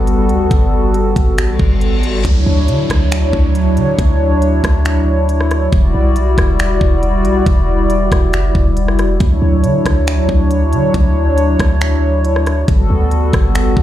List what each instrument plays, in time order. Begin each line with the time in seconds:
Already playing: 808-style bass G1, analog synth pad G3 B3 F#4 A4
0.07 closed hi-hat
0.29 808-style bass D2, closed hi-hat
0.51 808-style bass G1, kick, closed hi-hat
0.94 closed hi-hat
1.16 808-style bass G1, kick, closed hi-hat
1.38 808-style bass A1, finger snap, closed hi-hat, reverse cymbal
1.59 808-style bass G1, kick
1.81 closed hi-hat
1.92 808-style bass A1
2.03 closed hi-hat
2.08 808-style bass G1
2.25 808-style bass D2, analog synth pad F#3 D4 E4 C#5, kick, closed hi-hat, downlifter
2.46 808-style bass D2
2.68 808-style bass D3, closed hi-hat
2.90 808-style bass D2, kick, cross-stick, closed hi-hat
3.12 finger snap, closed hi-hat
3.33 808-style bass D2, kick
3.55 closed hi-hat
3.77 808-style bass D3, closed hi-hat
3.99 808-style bass D2, kick, closed hi-hat
4.42 closed hi-hat
4.64 808-style bass D2, kick, cross-stick, closed hi-hat
4.85 finger snap, closed hi-hat
5.29 closed hi-hat
5.41 cross-stick
5.51 cross-stick, closed hi-hat
5.72 808-style bass E1, analog synth pad G3 F#4 D5, kick, closed hi-hat
5.94 808-style bass B1
6.16 closed hi-hat
6.38 808-style bass E1, kick, cross-stick, closed hi-hat
6.59 finger snap, closed hi-hat
6.81 808-style bass E1, kick
7.03 closed hi-hat
7.25 808-style bass B1, closed hi-hat
7.46 808-style bass E1, kick, closed hi-hat
7.90 closed hi-hat
8.12 808-style bass E1, kick, cross-stick, closed hi-hat
8.33 808-style bass F#1, finger snap, closed hi-hat
8.55 808-style bass E1, kick
8.77 closed hi-hat
8.88 808-style bass F#1, cross-stick
8.99 cross-stick, closed hi-hat
9.04 808-style bass E1
9.20 808-style bass D2, analog synth pad F#3 D4 C#5, kick, closed hi-hat
9.42 808-style bass D2
9.64 808-style bass D3, closed hi-hat
9.86 808-style bass D2, kick, cross-stick, closed hi-hat
10.07 finger snap, closed hi-hat
10.29 808-style bass D2, kick
10.51 closed hi-hat
10.73 808-style bass D3, closed hi-hat
10.94 808-style bass D2, kick, closed hi-hat
11.38 closed hi-hat
11.60 808-style bass D2, kick, cross-stick, closed hi-hat
11.81 finger snap, closed hi-hat
12.25 closed hi-hat
12.36 cross-stick
12.46 cross-stick, closed hi-hat
12.68 808-style bass G1, analog synth pad G3 B3 F#4 A4, kick, closed hi-hat
12.90 808-style bass D2
13.11 closed hi-hat
13.33 808-style bass G1, kick, cross-stick, closed hi-hat
13.55 finger snap, closed hi-hat
13.77 808-style bass G1, kick